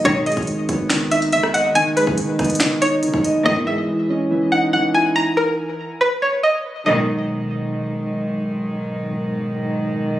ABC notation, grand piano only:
X:1
M:4/4
L:1/8
Q:1/4=141
K:G#m
V:1 name="Grand piano" clef=bass
D, G, D, B, D, D D, d | D, G, D, B, D, D D, d | E, G, E, C E, D E, E- | E4 z4 |
z8 | z8 |]